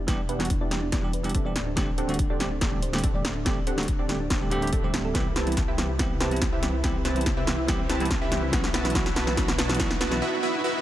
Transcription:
Already playing: E1, riser
0.07 E3 G3 B3 D4 E4 G4 D5, kick, snare, closed hi-hat
0.29 B3 D4 E4 G4 B4 F#5, closed hi-hat
0.39 E3 G3 B3 D4 F#4, snare, closed hi-hat
0.45 closed hi-hat
0.50 D4, kick, closed hi-hat
0.61 B3 D4 E4 G4 D5
0.70 E3 G3 B3 D4 G4, snare, closed hi-hat
0.82 D4
0.92 B3 D4 E4 G4 D5, kick, snare, closed hi-hat
1.02 E3 G3 B3 D4 G4
1.13 B4, closed hi-hat
1.23 E3 G3 B3 D4 G4, closed hi-hat
1.29 closed hi-hat
1.34 C4 D4 G4 A4 E5, kick, closed hi-hat
1.44 E3 G3 B3 D4 G4 D5
1.56 D1, snare, closed hi-hat
1.67 D4
1.76 D3 G3 A3 C4 D4 G4 A4 D5, kick, snare, closed hi-hat
1.98 C4 D4 G4 A4 C5 F#5, closed hi-hat
2.08 D3 G3 A3 C4 F#4, closed hi-hat
2.14 closed hi-hat
2.19 D4, kick, closed hi-hat
2.30 C4 D4 G4 A4 D5
2.39 D3 G3 A3 C4 G4, snare, closed hi-hat
2.51 D4
2.61 C4 D4 G4 A4 D5, kick, snare, closed hi-hat
2.71 D3 G3 A3 C4 G4
2.82 C5, closed hi-hat
2.92 D3 G3 A3 C4 G4, snare, closed hi-hat
2.98 closed hi-hat
3.04 C4 D4 G4 A4 E5, kick, closed hi-hat
3.14 D3 G3 A3 C4 G4 D5
3.25 snare, closed hi-hat
3.36 D4
3.45 D3 G3 A3 C4 D4 G4 A4 D5, kick, snare, closed hi-hat
3.67 C4 D4 G4 A4 C5 F#5, closed hi-hat
3.77 D3 G3 A3 C4 F#4, snare, closed hi-hat
3.83 closed hi-hat
3.88 D4, kick, closed hi-hat
3.99 C4 D4 G4 A4 D5
4.08 D3 G3 A3 C4 G4, snare, closed hi-hat
4.20 D4
4.30 C4 D4 G4 A4 D5, kick, snare, closed hi-hat
4.40 D3 G3 A3 C4 G4
4.50 D3 G3 A3 C4 G4, closed hi-hat
4.61 D3 G3 A3 C4 G4, closed hi-hat
4.67 closed hi-hat
4.73 C4 D4 G4 A4 E5, kick, closed hi-hat
4.82 D3 G3 A3 C4 G4 C5
4.94 snare, closed hi-hat
5.05 A4
5.14 C2 E3 G3 B3 C4 E4 G4 B4 E5, kick, snare, closed hi-hat
5.36 C4 E4 G4 B4 C5 A5, snare, closed hi-hat
5.46 E3 G3 B3 C4 E4, closed hi-hat
5.52 closed hi-hat
5.57 E4, kick, snare, closed hi-hat
5.68 C4 E4 G4 B4 E5
5.77 E3 G3 B3 C4 G4, snare, closed hi-hat
5.89 E4
5.98 E3 G3 B3 C4 E4 G4 B4 E5, kick, snare, closed hi-hat
6.20 C4 E4 G4 B4 C5 A5, snare, closed hi-hat
6.30 E3 G3 B3 C4 E4, closed hi-hat
6.36 closed hi-hat
6.42 E4, kick, snare, closed hi-hat
6.53 C4 E4 G4 B4 E5
6.62 E3 G3 B3 C4 G4, snare, closed hi-hat
6.74 E4
6.83 E3 G3 B3 C4 E4 G4 B4 E5, kick, snare, closed hi-hat
7.05 C4 E4 G4 B4 C5 A5, snare, closed hi-hat
7.15 E3 G3 B3 C4 E4, closed hi-hat
7.21 closed hi-hat
7.26 E4, kick, snare, closed hi-hat
7.37 C4 E4 G4 B4 E5
7.46 E3 G3 B3 C4 G4, snare, closed hi-hat
7.58 E4
7.67 E3 G3 B3 C4 E4 G4 B4 E5, kick, snare, closed hi-hat
7.90 C4 E4 G4 B4 C5 A5, snare, closed hi-hat
7.99 E3 G3 B3 C4 E4, closed hi-hat
8.05 closed hi-hat
8.11 E4, kick, snare, closed hi-hat
8.22 C4 E4 G4 B4 E5
8.31 E3 G3 B3 C4 G4, snare, closed hi-hat
8.43 E4
8.52 B1 E3 F#3 B3 E4 F#4 B4 E5, kick, snare, closed hi-hat
8.64 snare
8.74 B3 E4 F#4 B4 A5, snare, closed hi-hat
8.84 E3 F#3 B3 E4, snare, closed hi-hat
8.90 E3, closed hi-hat
8.95 F#3 B3 E4 F#4 B4 E5, kick, snare, closed hi-hat
9.06 snare
9.16 B3 E4 F#4 B4 A5, snare, closed hi-hat
9.26 E3 F#3 B3 E4, snare
9.36 E3 F#3 B3 E4 F#4 B4 E5, kick, snare, closed hi-hat
9.48 snare
9.58 B3 E4 F#4 B4 A5, snare, closed hi-hat
9.68 E3 F#3 B3 E4, snare, closed hi-hat
9.75 E3, closed hi-hat
9.79 F#3 B3 E4 F#4 B4 E5, kick, snare, closed hi-hat
9.91 snare
10.01 B3 E4 F#4 B4 A5, snare, closed hi-hat
10.11 E3 F#3 B3 E4, snare
10.22 B3 E4 F#4 B4 E5
10.43 B3 E4 F#4 B4 E5
10.64 B3 E4 F#4 B4 E5

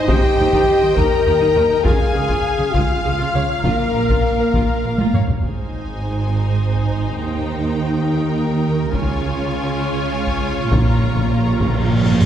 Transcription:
Already playing: C5 D#5
0.08 D#2 D#3 D#4 G4 G5, taiko
0.37 D#2 D#3 G4
0.53 D#3 D#4, taiko
0.82 D#3 G4
0.96 D#2 D#3 D#4 A#4 A#5, taiko
1.26 D#2 D#3 G4
1.41 D#3 D#4
1.55 D#2 D#3 A#4
1.84 C#2 C#3 F4 G#4 F5 G#5, taiko
2.13 C#2 C#3 G#4
2.28 C#3 F4, taiko
2.58 C#3 G#4
2.73 C#2 C#3 F4 F5, taiko
3.04 C#2 C#3 G#4
3.18 C#3 F4
3.34 C#2 C#3 C#5
3.64 A#1 A#2 A#3 F4 A#4, taiko
3.94 A#1 A#2 A#4
4.09 A#2 F4, taiko
4.39 A#2 A#4
4.54 A#1 A#2 F4, taiko
4.84 A#1 A#2 A#4
4.98 A#2 F4, taiko high
5.13 A#1 A#2 C#5, taiko low-mid
5.28 taiko low
5.43 G#1 G#2 C4 D#4 G#4 C5 G#5, taiko
6.74 taiko
7.19 D#2 D#3 A#3 G4 G5
8.06 A#4
8.93 C#2 C#3 C#4 F4 C#5 G#5, taiko
10.27 taiko
10.71 A#1 A#2 A#5, taiko, cymbal swell
10.81 A#2
10.88 A#2
10.95 A#2
11.03 A#2
11.10 A#2
11.16 A#2, taiko
11.24 A#2
11.31 A#2
11.39 A#2
11.47 A#2
11.60 A#2, taiko
11.70 A#2
11.78 A#2
11.85 A#2
11.93 A#2
12.00 A#2
12.06 A#2, taiko low-mid
12.15 A#2
12.21 taiko low-mid

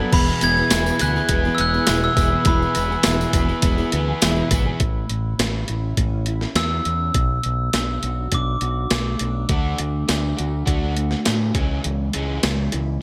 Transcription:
Already playing: F#3 B3 D4 A4 D5 B5
0.00 B3 D4 A4
0.12 E1 E2 B2 E3 B3 E4 G#4 B4 E5 B5, kick, crash, tambourine
0.28 tambourine
0.41 E1 E3 B3 E4 G#4 G#6, closed hi-hat, tambourine
0.57 E3 B3 E4 G#4, tambourine
0.70 E1 E2 B2 E3 B3 E4 G#4, snare, closed hi-hat, tambourine
0.86 E3 B3 E4 G#4, tambourine
0.99 D2 E3 B3 E4 G#4 F#6, closed hi-hat, tambourine
1.14 E3 B3 E4 G#4, tambourine
1.29 E1 B3, kick, closed hi-hat, tambourine
1.44 E3 B3 E4 G#4, tambourine
1.55 B3 E6, closed hi-hat
1.59 E1 F#6
1.73 E3 B3 E4 G#4, tambourine
1.87 E1 E2 B2 E4, snare, closed hi-hat, tambourine
1.89 E3 B3 E4 G#4, tambourine
2.03 E6, tambourine
2.17 E1 E3 B3 E4 G#4, kick, closed hi-hat, tambourine
2.32 E3 B3 E4 G#4
2.45 E1 E2 B2 E3 B3 E4 G#4 B5, kick, closed hi-hat, tambourine
2.62 tambourine
2.75 E1 E3 B3 E4 G#4, closed hi-hat, tambourine
2.90 E3 B3 E4 G#4, tambourine
3.03 E1 E2 E3 E4, snare, closed hi-hat, tambourine
3.06 B2 B3 E4 G#4, tambourine
3.20 E3 B3 E4 G#4, tambourine
3.33 E1 E3 B3 E4 G#4, kick, closed hi-hat, tambourine
3.49 E3 B3 E4 G#4, tambourine
3.62 E1 B3, kick, closed hi-hat, tambourine
3.76 E3 B3 E4 G#4, tambourine
3.92 D2 B3, closed hi-hat, tambourine
4.08 E3 B3 E4 G#4
4.22 E1 E2 B2 E3 B3 E4, snare, closed hi-hat, tambourine
4.26 E4 G#4
4.36 tambourine
4.51 G#1 E3 B3 E4 G#4, kick, closed hi-hat, tambourine
4.66 E3 B3 E4 G#4
4.80 A1 A2, kick, closed hi-hat
5.09 A1, closed hi-hat
5.38 A1 C#4, snare, closed hi-hat, tambourine
5.68 A1 E4, closed hi-hat
5.97 A1 C#4, kick, closed hi-hat
6.26 E4, closed hi-hat
6.41 snare
6.55 E2 B3 E6, snare, closed hi-hat, tambourine
6.85 E2 C#4, closed hi-hat
7.14 B1 B2, kick, closed hi-hat
7.43 B1, closed hi-hat
7.73 B1 D4, snare, closed hi-hat, tambourine
8.03 B1 F#4, closed hi-hat
8.32 B1 D4 D6, kick, closed hi-hat
8.61 B1 F#4, closed hi-hat
8.90 B1 A3, snare, closed hi-hat, tambourine
9.19 B1 D4, closed hi-hat
9.49 D2 D3 A3 D4 F#4, kick, closed hi-hat
9.78 D2 A3 D4, closed hi-hat
10.08 D2 A3 D4, snare, closed hi-hat, tambourine
10.37 D2 A3 D4 F#4, closed hi-hat
10.66 D2 A3 D4 F#4, kick, closed hi-hat
10.95 A3 D4 F#4, closed hi-hat
11.11 snare
11.25 A2 A3 D4, snare, closed hi-hat, tambourine
11.55 C#2 C#3 E3 G#3 C#4, kick, closed hi-hat
11.83 C#2 C#3 E3 G#3, closed hi-hat
12.13 C#2 E3 G#3 C#4, closed hi-hat
12.43 C#2 E3 G#3 C#4, snare, closed hi-hat, tambourine
12.72 C#2 E3 G#3 E4, closed hi-hat

